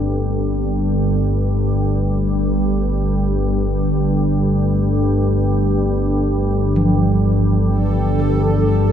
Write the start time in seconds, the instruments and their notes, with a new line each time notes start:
Already playing: synth drone G1 G2, ambient pad G3 D4 A4, bronze metallophone C4
6.76 bronze metallophone F3
7.69 synth texture A4
8.20 bronze metallophone A4